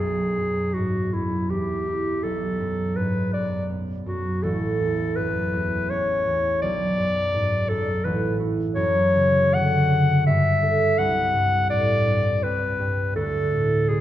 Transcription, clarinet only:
Already playing: G#4
0.74 F#4
1.13 E4
1.50 G4
2.23 A4
2.97 B4
3.33 D5
4.07 F#4
4.43 A4
5.16 B4
5.90 C#5
6.62 D5
7.69 A4
8.05 B4
8.75 C#5
9.55 F#5
10.27 E5
10.99 F#5
11.70 D5
12.43 B4
13.16 A4
13.89 G#4

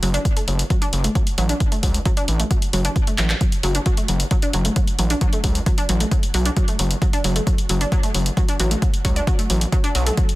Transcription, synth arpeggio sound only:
0.03 F#3
0.14 D4
0.37 A3
0.48 F#3
0.70 F#3
0.82 D4
1.04 A3
1.15 F#3
1.38 F#3
1.49 D4
1.72 A3
1.83 F#3
2.06 F#3
2.17 D4
2.40 A3
2.51 F#3
2.73 F#3
2.85 D4
3.07 A3
3.18 F#3
3.41 F#3
3.63 F#3
3.75 D4
3.86 F#3
3.98 A3
4.09 F#3
4.31 F#3
4.43 D4
4.54 F#3
4.65 A3
4.76 F#3
4.99 F#3
5.10 D4
5.22 F#3
5.33 A3
5.44 F#3
5.67 F#3
5.78 D4
5.89 F#3
6.01 A3
6.12 F#3
6.34 F#3
6.46 D4
6.57 F#3
6.68 A3
6.79 F#3
7.02 F#3
7.13 D4
7.24 F#3
7.36 A3
7.47 F#3
7.70 F#3
7.81 D4
7.92 F#3
8.03 A3
8.15 F#3
8.37 F#3
8.49 D4
8.60 F#3
8.71 A3
8.82 F#3
9.05 F#3
9.16 D4
9.27 F#3
9.39 A3
9.50 F#3
9.72 F#3
9.84 D4
9.95 F#3
10.06 A3
10.18 F#3

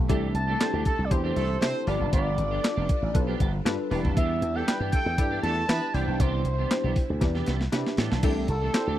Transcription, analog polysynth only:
0.09 D4 E4 G4 A4
0.60 D4 E4 G4 A4
1.11 D4 E4 G4 C5
1.61 D4 E4 G4 A4
1.87 D4 F4 A4 B4
2.63 D4 F4 A4 D5
3.14 D4 F4 A4 B4
3.65 D4 F4 A4 B4
3.91 D4 E4 G4 B4
4.67 D4 E4 G4 B4
5.18 D4 E4 G4 A4
5.69 D4 E4 G4 B4
5.94 D4 E4 G4 C5
6.71 D4 E4 G4 C5
7.21 D4 E4 G4 B4
7.72 D4 E4 G4 B4
8.23 D4 E4 G4 A4
8.74 D4 E4 G4 C5

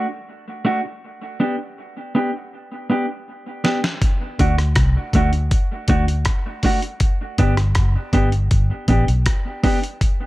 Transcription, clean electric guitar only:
0.65 A3 D4 F#4
0.85 muted clean electric guitar stroke
1.40 B3 D4 G4
2.15 B3 D4 G4
2.90 B3 D4 G4
3.64 B3 D4 G4
4.39 A3 D4 F#4
5.15 A3 D4 F#4
5.89 A3 D4 F#4
6.64 A3 D4 F#4
7.39 B3 D4 G4
8.13 B3 D4 G4
8.88 B3 D4 G4
9.63 B3 D4 G4

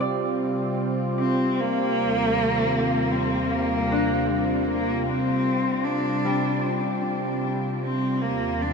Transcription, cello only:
1.18 C4
1.60 A#3
3.11 C4
3.51 A#3
4.29 G3
4.67 A#3
5.07 C4
5.83 D4
7.84 C4
8.22 A#3
8.62 D4

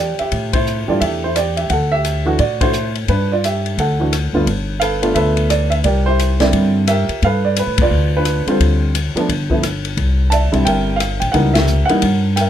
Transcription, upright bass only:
Already playing: E2
0.20 muted upright bass stroke
0.32 A2
0.88 G2
1.01 E2
1.70 D2
2.39 A2
3.08 G2
3.77 D2
4.33 D2
4.47 G1
5.15 D2
5.85 C2
6.53 G2
7.09 muted upright bass stroke
7.22 G2
7.67 A2
7.79 F2
7.91 D2
8.47 muted upright bass stroke
8.60 D2
9.15 muted upright bass stroke
9.29 G1
9.97 C2
10.53 B1
10.66 G1
11.22 A#1
11.34 C#2
11.89 muted upright bass stroke
12.02 G2

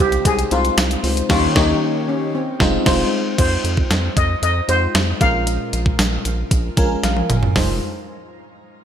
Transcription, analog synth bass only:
0.00 C2
0.25 C2
0.51 C2
0.77 C2
1.03 C#2
1.30 D#2
1.56 D#2
2.60 F1
2.86 F1
3.39 F2
3.64 F2
3.90 F2
4.17 F2
4.42 F2
4.69 F2
4.95 F2
5.21 A#1
5.73 A#1
5.99 A#1
6.25 A#1
6.51 A#1
6.77 A#1
7.04 A#1
7.30 G1
7.56 F1

